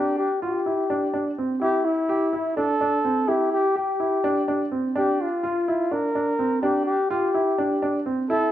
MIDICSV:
0, 0, Header, 1, 3, 480
1, 0, Start_track
1, 0, Tempo, 477327
1, 1623, Time_signature, 7, 3, 24, 8
1, 8566, End_track
2, 0, Start_track
2, 0, Title_t, "Flugelhorn"
2, 0, Program_c, 0, 56
2, 0, Note_on_c, 0, 67, 81
2, 176, Note_off_c, 0, 67, 0
2, 182, Note_on_c, 0, 67, 78
2, 405, Note_off_c, 0, 67, 0
2, 424, Note_on_c, 0, 67, 67
2, 1343, Note_off_c, 0, 67, 0
2, 1620, Note_on_c, 0, 67, 86
2, 1858, Note_on_c, 0, 64, 84
2, 1873, Note_off_c, 0, 67, 0
2, 2576, Note_off_c, 0, 64, 0
2, 2582, Note_on_c, 0, 69, 91
2, 3303, Note_on_c, 0, 67, 78
2, 3318, Note_off_c, 0, 69, 0
2, 3539, Note_off_c, 0, 67, 0
2, 3545, Note_on_c, 0, 67, 88
2, 3768, Note_off_c, 0, 67, 0
2, 3798, Note_on_c, 0, 67, 71
2, 4711, Note_off_c, 0, 67, 0
2, 4998, Note_on_c, 0, 67, 81
2, 5239, Note_on_c, 0, 65, 82
2, 5254, Note_off_c, 0, 67, 0
2, 5953, Note_on_c, 0, 70, 99
2, 5968, Note_off_c, 0, 65, 0
2, 6653, Note_off_c, 0, 70, 0
2, 6659, Note_on_c, 0, 67, 82
2, 6884, Note_off_c, 0, 67, 0
2, 6892, Note_on_c, 0, 67, 83
2, 7121, Note_off_c, 0, 67, 0
2, 7145, Note_on_c, 0, 67, 76
2, 8064, Note_off_c, 0, 67, 0
2, 8338, Note_on_c, 0, 69, 93
2, 8566, Note_off_c, 0, 69, 0
2, 8566, End_track
3, 0, Start_track
3, 0, Title_t, "Grand piano"
3, 0, Program_c, 1, 0
3, 0, Note_on_c, 1, 62, 75
3, 269, Note_off_c, 1, 62, 0
3, 425, Note_on_c, 1, 65, 66
3, 587, Note_off_c, 1, 65, 0
3, 664, Note_on_c, 1, 64, 62
3, 827, Note_off_c, 1, 64, 0
3, 904, Note_on_c, 1, 62, 68
3, 1067, Note_off_c, 1, 62, 0
3, 1142, Note_on_c, 1, 62, 66
3, 1305, Note_off_c, 1, 62, 0
3, 1391, Note_on_c, 1, 60, 60
3, 1551, Note_off_c, 1, 60, 0
3, 1625, Note_on_c, 1, 64, 75
3, 1950, Note_off_c, 1, 64, 0
3, 2102, Note_on_c, 1, 67, 78
3, 2265, Note_off_c, 1, 67, 0
3, 2344, Note_on_c, 1, 64, 68
3, 2506, Note_off_c, 1, 64, 0
3, 2584, Note_on_c, 1, 62, 73
3, 2747, Note_off_c, 1, 62, 0
3, 2824, Note_on_c, 1, 62, 69
3, 2987, Note_off_c, 1, 62, 0
3, 3062, Note_on_c, 1, 60, 64
3, 3225, Note_off_c, 1, 60, 0
3, 3297, Note_on_c, 1, 64, 71
3, 3625, Note_off_c, 1, 64, 0
3, 3779, Note_on_c, 1, 67, 72
3, 3944, Note_off_c, 1, 67, 0
3, 4021, Note_on_c, 1, 64, 59
3, 4185, Note_off_c, 1, 64, 0
3, 4264, Note_on_c, 1, 62, 73
3, 4427, Note_off_c, 1, 62, 0
3, 4505, Note_on_c, 1, 62, 70
3, 4668, Note_off_c, 1, 62, 0
3, 4742, Note_on_c, 1, 60, 60
3, 4906, Note_off_c, 1, 60, 0
3, 4983, Note_on_c, 1, 62, 73
3, 5309, Note_off_c, 1, 62, 0
3, 5465, Note_on_c, 1, 65, 74
3, 5627, Note_off_c, 1, 65, 0
3, 5713, Note_on_c, 1, 64, 67
3, 5873, Note_off_c, 1, 64, 0
3, 5947, Note_on_c, 1, 62, 65
3, 6109, Note_off_c, 1, 62, 0
3, 6186, Note_on_c, 1, 62, 65
3, 6349, Note_off_c, 1, 62, 0
3, 6425, Note_on_c, 1, 60, 63
3, 6588, Note_off_c, 1, 60, 0
3, 6665, Note_on_c, 1, 62, 73
3, 6990, Note_off_c, 1, 62, 0
3, 7145, Note_on_c, 1, 65, 81
3, 7307, Note_off_c, 1, 65, 0
3, 7385, Note_on_c, 1, 64, 68
3, 7548, Note_off_c, 1, 64, 0
3, 7626, Note_on_c, 1, 62, 69
3, 7788, Note_off_c, 1, 62, 0
3, 7867, Note_on_c, 1, 62, 71
3, 8029, Note_off_c, 1, 62, 0
3, 8104, Note_on_c, 1, 60, 64
3, 8267, Note_off_c, 1, 60, 0
3, 8345, Note_on_c, 1, 64, 78
3, 8566, Note_off_c, 1, 64, 0
3, 8566, End_track
0, 0, End_of_file